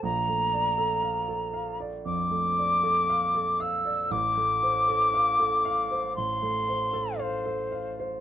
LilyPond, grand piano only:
\new Staff \with { instrumentName = "Grand piano" } { \time 4/4 \key f \major \tempo 4 = 58 bes,,16 a16 d''16 a'16 f''16 a'16 f''16 d''16 f,16 a16 d''16 a'16 f''16 a'16 f''16 d''16 | a,,16 a16 c''16 a'16 f''16 a'16 f''16 c''16 a,,16 a16 c''16 a'16 f''16 a'16 f''16 c''16 | }